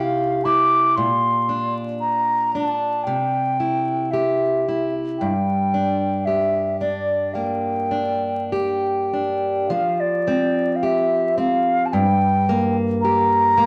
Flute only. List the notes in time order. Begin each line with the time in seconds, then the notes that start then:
0.00 F5 G5
0.44 D6
0.96 C6
2.00 A#5
2.52 A5
3.03 G5
4.11 E5
5.19 G5
6.25 E5
6.80 D5
7.34 G5
8.54 G5
9.71 F5
10.00 D5
10.76 F5
10.84 E5
11.39 F5
11.86 A5
11.92 G5
13.01 A#5